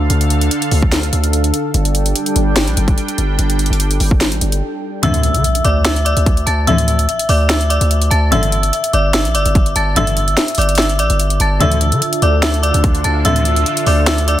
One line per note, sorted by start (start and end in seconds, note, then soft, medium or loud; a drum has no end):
0.00 1.71 D3 medium
0.00 1.70 D4 medium
0.00 4.99 A4 medium
0.00 1.71 F5 medium
0.10 0.49 D2 loud
0.10 closed hi-hat medium
0.21 closed hi-hat medium
0.30 closed hi-hat medium
0.41 closed hi-hat medium
0.51 closed hi-hat medium
0.62 closed hi-hat medium
0.71 1.11 D2 loud
0.71 open hi-hat medium
0.82 kick loud
0.92 snare loud
0.92 closed hi-hat medium
1.03 closed hi-hat medium
1.13 1.52 D2 loud
1.13 closed hi-hat medium
1.24 closed hi-hat medium
1.33 closed hi-hat medium
1.44 closed hi-hat medium
1.54 closed hi-hat medium
1.74 2.14 G1 loud
1.74 5.00 G3 medium
1.74 5.00 D4 medium
1.74 5.00 G5 medium
1.74 closed hi-hat medium
1.85 closed hi-hat medium
1.95 closed hi-hat medium
2.06 closed hi-hat medium
2.16 closed hi-hat medium
2.26 closed hi-hat medium
2.36 2.69 G1 loud
2.36 closed hi-hat medium
2.56 snare loud
2.56 closed hi-hat medium
2.67 2.76 A#1 loud
2.67 closed hi-hat medium
2.77 2.97 G1 loud
2.77 closed hi-hat medium
2.88 kick loud
2.88 closed hi-hat medium
2.98 closed hi-hat medium
3.08 closed hi-hat medium
3.18 3.38 G1 loud
3.18 closed hi-hat medium
3.39 3.69 G1 loud
3.39 closed hi-hat medium
3.50 closed hi-hat medium
3.59 closed hi-hat medium
3.66 closed hi-hat medium
3.70 3.99 G1 loud
3.70 closed hi-hat medium
3.80 closed hi-hat medium
3.91 closed hi-hat medium
4.00 4.33 G1 loud
4.00 open hi-hat medium
4.11 kick loud
4.21 snare loud
4.21 closed hi-hat medium
4.32 4.41 A1 loud
4.32 closed hi-hat medium
4.41 4.62 G1 loud
4.41 closed hi-hat medium
4.52 closed hi-hat medium
5.03 5.20 A1 loud
5.03 5.36 D2 loud
5.03 5.20 F2 loud
5.03 5.20 D3 loud
5.03 5.61 E5 medium
5.03 5.61 E6 loud
5.03 closed hi-hat medium
5.03 impact medium
5.14 closed hi-hat medium
5.23 closed hi-hat medium
5.34 5.44 D3 loud
5.34 closed hi-hat medium
5.44 closed hi-hat medium
5.55 closed hi-hat medium
5.64 6.15 D2 loud
5.64 5.84 D5 medium
5.64 5.84 D6 medium
5.64 closed hi-hat medium
5.85 6.05 E5 medium
5.85 6.04 E6 medium
5.85 snare loud
5.85 closed hi-hat medium
5.96 closed hi-hat medium
6.05 6.44 D5 medium
6.05 6.44 D6 medium
6.05 closed hi-hat medium
6.17 6.46 D2 loud
6.17 closed hi-hat medium
6.26 kick loud
6.26 closed hi-hat medium
6.37 closed hi-hat medium
6.46 6.67 D2 loud
6.46 6.66 A5 medium
6.46 6.67 A6 medium
6.46 closed hi-hat medium
6.67 6.85 A1 loud
6.67 7.07 D2 loud
6.67 6.85 F2 loud
6.67 6.85 D3 loud
6.67 7.26 E5 medium
6.67 7.25 E6 loud
6.67 closed hi-hat medium
6.78 closed hi-hat medium
6.88 closed hi-hat medium
6.99 closed hi-hat medium
7.09 closed hi-hat medium
7.19 closed hi-hat medium
7.29 7.79 D2 loud
7.29 7.49 D5 medium
7.29 7.49 D6 medium
7.29 open hi-hat medium
7.50 7.69 E5 medium
7.50 7.69 E6 medium
7.50 snare loud
7.50 closed hi-hat medium
7.61 closed hi-hat medium
7.70 8.09 D5 medium
7.70 8.09 D6 medium
7.70 closed hi-hat medium
7.81 8.10 D2 loud
7.81 closed hi-hat medium
7.91 closed hi-hat medium
8.02 closed hi-hat medium
8.11 8.31 D2 loud
8.11 8.30 A5 medium
8.11 8.31 A6 medium
8.11 closed hi-hat medium
8.32 8.71 G1 loud
8.32 8.49 A1 loud
8.32 8.49 G2 loud
8.32 8.49 D3 loud
8.32 8.90 E5 medium
8.32 8.90 E6 loud
8.32 closed hi-hat medium
8.43 closed hi-hat medium
8.52 closed hi-hat medium
8.63 closed hi-hat medium
8.73 closed hi-hat medium
8.84 closed hi-hat medium
8.93 9.26 G1 loud
8.93 9.13 D5 medium
8.93 9.13 D6 medium
8.93 closed hi-hat medium
9.14 9.34 E5 medium
9.14 9.33 E6 medium
9.14 snare loud
9.14 closed hi-hat medium
9.25 9.36 A#1 loud
9.25 closed hi-hat medium
9.34 9.45 G1 loud
9.34 9.74 D5 medium
9.34 9.73 D6 medium
9.34 closed hi-hat medium
9.45 9.74 G1 loud
9.45 closed hi-hat medium
9.55 kick medium
9.55 closed hi-hat medium
9.66 closed hi-hat medium
9.76 9.95 G1 loud
9.76 9.95 A5 medium
9.76 9.96 A6 medium
9.76 closed hi-hat medium
9.96 10.36 G1 loud
9.96 10.14 A1 loud
9.96 10.14 G2 loud
9.96 10.14 D3 loud
9.96 10.55 E5 medium
9.96 10.54 E6 loud
9.96 closed hi-hat medium
10.07 closed hi-hat medium
10.17 closed hi-hat medium
10.28 closed hi-hat medium
10.37 snare loud
10.37 closed hi-hat medium
10.48 closed hi-hat medium
10.55 11.00 G1 loud
10.55 10.77 D6 medium
10.55 closed hi-hat medium
10.55 open hi-hat medium
10.59 10.78 D5 medium
10.59 closed hi-hat medium
10.69 closed hi-hat medium
10.75 10.98 E5 medium
10.75 10.98 E6 medium
10.75 snare loud
10.75 closed hi-hat medium
10.82 closed hi-hat medium
10.89 closed hi-hat medium
10.99 11.09 A1 loud
10.99 11.38 D5 medium
10.99 11.37 D6 medium
10.99 closed hi-hat medium
11.10 11.39 G1 loud
11.10 closed hi-hat medium
11.20 closed hi-hat medium
11.30 closed hi-hat medium
11.40 11.60 G1 loud
11.40 11.60 A5 medium
11.40 11.60 A6 medium
11.40 closed hi-hat medium
11.60 11.78 A1 medium
11.60 11.93 D2 loud
11.60 11.78 F2 loud
11.60 11.78 D3 loud
11.60 14.40 D3 medium
11.60 14.40 D4 medium
11.60 14.40 F4 medium
11.60 14.40 A4 medium
11.60 12.19 E5 medium
11.60 12.19 E6 loud
11.60 closed hi-hat medium
11.72 closed hi-hat medium
11.81 closed hi-hat medium
11.92 12.01 D3 loud
11.92 closed hi-hat medium
12.02 closed hi-hat medium
12.13 closed hi-hat medium
12.22 12.72 D2 loud
12.22 12.42 D5 medium
12.22 12.42 D6 medium
12.22 closed hi-hat medium
12.42 12.62 E5 medium
12.42 12.62 E6 medium
12.42 snare loud
12.42 closed hi-hat medium
12.54 closed hi-hat medium
12.63 13.02 D5 medium
12.63 13.02 D6 medium
12.63 closed hi-hat medium
12.74 13.03 D2 loud
12.74 closed hi-hat medium
12.84 kick loud
12.84 closed hi-hat medium
12.95 closed hi-hat medium
13.04 13.24 D2 loud
13.04 13.24 A5 medium
13.04 13.24 A6 medium
13.04 closed hi-hat medium
13.25 13.42 A1 loud
13.25 13.64 D2 loud
13.25 13.42 F2 loud
13.25 13.42 D3 loud
13.25 13.83 E5 medium
13.25 13.83 E6 medium
13.25 closed hi-hat medium
13.36 closed hi-hat medium
13.45 closed hi-hat medium
13.56 closed hi-hat medium
13.66 closed hi-hat medium
13.77 closed hi-hat medium
13.86 14.36 D2 loud
13.86 14.07 D5 medium
13.86 14.06 D6 medium
13.86 open hi-hat medium
14.07 14.27 E5 medium
14.07 14.27 E6 medium
14.07 snare loud
14.07 closed hi-hat medium
14.18 closed hi-hat medium
14.28 14.40 D5 medium
14.28 14.40 D6 medium
14.28 closed hi-hat medium